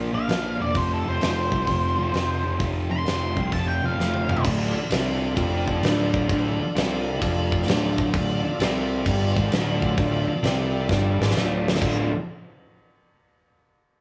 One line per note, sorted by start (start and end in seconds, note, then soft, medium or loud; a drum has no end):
0.00 0.11 A#1 medium
0.00 0.11 A#2 medium
0.00 0.13 F3 medium
0.00 0.12 A#3 loud
0.00 0.71 D4 medium
0.00 0.71 F4 medium
0.00 0.71 A#4 medium
0.12 0.27 A#1 medium
0.12 0.27 A#2 medium
0.12 0.29 F3 medium
0.12 0.28 A#3 medium
0.12 0.59 F5 loud
0.28 0.57 A#1 medium
0.28 0.58 A#2 medium
0.28 0.60 F3 medium
0.28 0.60 A#3 medium
0.28 snare loud
0.28 open hi-hat medium
0.59 0.73 E1 medium
0.59 0.74 A#2 medium
0.59 0.75 F3 medium
0.59 0.75 A#3 medium
0.59 0.77 D5 medium
0.75 1.03 F1 medium
0.75 1.05 F2 medium
0.75 1.05 C3 medium
0.75 1.06 F3 medium
0.75 0.90 C#4 medium
0.75 0.91 F#4 medium
0.75 0.90 A#4 medium
0.75 0.91 C5 medium
0.75 kick loud
0.75 open hi-hat soft
0.91 4.42 C4 medium
0.91 4.42 F4 medium
0.91 4.41 A4 medium
0.91 1.08 A4 medium
1.05 1.20 F1 medium
1.05 1.21 F2 medium
1.05 1.21 C3 medium
1.05 1.22 F3 loud
1.05 1.21 C5 medium
1.21 1.49 F1 medium
1.21 1.52 F2 medium
1.21 1.52 C3 loud
1.21 1.53 F3 loud
1.21 2.56 C5 loud
1.21 snare loud
1.21 open hi-hat medium
1.52 1.66 C2 medium
1.52 1.66 F2 medium
1.52 1.67 C3 medium
1.52 1.68 F3 medium
1.52 kick medium
1.67 1.95 F1 medium
1.67 1.96 F2 medium
1.67 1.97 C3 loud
1.67 1.98 F3 medium
1.67 kick medium
1.67 open hi-hat soft
1.97 2.12 F1 medium
1.97 2.12 F2 medium
1.97 2.12 C3 medium
1.97 2.14 F3 medium
2.13 2.41 F1 medium
2.13 2.43 F2 medium
2.13 2.44 C3 loud
2.13 2.45 F3 loud
2.13 snare loud
2.13 open hi-hat soft
2.44 2.58 F1 medium
2.44 2.59 F2 medium
2.44 2.59 C3 medium
2.44 2.60 F3 medium
2.60 2.88 F1 medium
2.60 2.90 F2 medium
2.60 2.90 C3 medium
2.60 2.91 F3 medium
2.60 kick loud
2.60 open hi-hat soft
2.90 3.04 F1 medium
2.90 3.05 F2 medium
2.90 3.06 C3 medium
2.90 3.06 F3 loud
2.90 3.51 C6 medium
3.06 3.34 F1 medium
3.06 3.36 F2 medium
3.06 3.37 C3 medium
3.06 3.37 F3 loud
3.06 snare loud
3.06 open hi-hat soft
3.37 3.51 C2 medium
3.37 3.52 F2 medium
3.37 3.52 C3 medium
3.37 3.53 F3 medium
3.37 kick medium
3.52 3.80 F1 medium
3.52 3.82 F2 medium
3.52 3.82 C3 medium
3.52 3.83 F3 medium
3.52 3.68 A5 loud
3.52 kick medium
3.52 open hi-hat soft
3.68 3.86 G5 medium
3.82 3.97 F1 medium
3.82 3.97 F2 medium
3.82 3.97 C3 medium
3.82 3.98 F3 medium
3.82 4.44 F5 loud
3.98 4.26 F1 loud
3.98 4.28 F2 medium
3.98 4.28 C3 medium
3.98 4.29 F3 medium
3.98 snare medium
4.14 high tom medium
4.29 4.43 F1 medium
4.29 4.44 F2 medium
4.29 4.44 C3 medium
4.29 4.44 F3 medium
4.29 mid tom medium
4.37 floor tom medium
4.44 4.73 D1 medium
4.44 4.74 D2 medium
4.44 4.74 D3 loud
4.44 8.10 D4 medium
4.44 8.09 F4 medium
4.44 8.09 A4 medium
4.44 kick loud
4.44 crash loud
4.44 crash medium
4.75 muted picked electric bass stroke soft
4.75 muted distorted electric guitar stroke medium
4.90 5.34 C2 medium
4.90 5.36 C3 loud
4.90 5.37 C4 loud
4.90 snare loud
4.90 crash medium
5.37 5.80 F1 loud
5.37 5.82 F2 medium
5.37 5.83 F3 medium
5.37 kick loud
5.37 crash medium
5.68 kick medium
5.83 6.26 D1 loud
5.83 6.27 D2 medium
5.83 6.28 D3 loud
5.83 snare loud
5.83 crash medium
6.14 kick medium
6.28 6.58 D1 loud
6.28 6.58 D2 medium
6.28 6.59 D3 loud
6.28 kick loud
6.28 crash medium
6.60 muted picked electric bass stroke soft
6.60 muted distorted electric guitar stroke medium
6.75 7.18 C2 medium
6.75 7.20 C3 loud
6.75 7.21 C4 loud
6.75 snare loud
6.75 crash medium
7.20 7.64 F1 loud
7.20 7.66 F2 loud
7.20 7.67 F3 loud
7.20 kick loud
7.20 crash medium
7.52 kick medium
7.62 snare soft
7.67 8.10 D1 loud
7.67 8.13 D2 medium
7.67 8.13 D3 loud
7.67 snare loud
7.67 crash medium
7.98 kick medium
8.13 8.42 D1 loud
8.13 8.43 D2 loud
8.13 8.44 D3 loud
8.13 11.78 F4 medium
8.13 11.78 A4 medium
8.13 11.78 D5 medium
8.13 kick loud
8.13 crash medium
8.44 muted picked electric bass stroke soft
8.44 muted distorted electric guitar stroke medium
8.59 9.02 C2 medium
8.59 9.06 C3 loud
8.59 9.06 C4 loud
8.59 snare loud
8.59 crash medium
9.06 9.34 G1 loud
9.06 9.36 G2 medium
9.06 9.36 G3 loud
9.06 kick medium
9.06 crash medium
9.36 9.51 G#1 medium
9.36 9.52 G#2 loud
9.36 9.52 G#3 loud
9.36 kick medium
9.51 9.94 D1 loud
9.51 9.97 D2 medium
9.51 9.98 D3 loud
9.51 snare loud
9.51 crash medium
9.82 kick medium
9.98 10.26 D1 loud
9.98 10.27 D2 loud
9.98 10.28 D3 loud
9.98 kick loud
9.98 crash medium
10.28 muted picked electric bass stroke soft
10.28 muted distorted electric guitar stroke medium
10.42 10.86 C2 medium
10.42 10.88 C3 medium
10.42 10.89 C4 loud
10.42 snare loud
10.42 crash medium
10.89 11.18 G1 medium
10.89 11.19 G2 medium
10.89 11.20 G3 medium
10.89 kick medium
10.89 snare medium
11.19 11.34 G#1 medium
11.19 11.35 G#2 medium
11.19 11.35 G#3 medium
11.19 snare medium
11.30 snare medium
11.35 11.78 D1 loud
11.35 11.80 D2 medium
11.35 11.81 D3 loud
11.35 snare medium
11.68 snare loud
11.76 snare loud
11.81 12.10 D1 medium
11.81 12.06 D2 medium
11.81 12.06 A2 medium
11.81 12.06 D3 medium
11.81 12.06 A3 loud
11.81 12.18 D4 medium
11.81 12.18 F4 medium
11.81 12.06 F4 loud
11.81 12.17 A4 medium
11.81 kick loud
11.81 crash medium